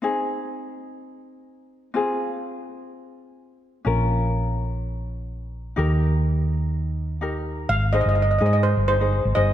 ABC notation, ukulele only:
X:1
M:4/4
L:1/16
Q:1/4=125
K:Ab
V:1 name="Ukulele"
[CEA]16 | [CFA]16 | [DFB]16 | [EGB]12 [EGB]4 |
z2 [EAc]2 z2 [EAc]2 z2 [EAc] [EAc]2 z [EAc]2 |]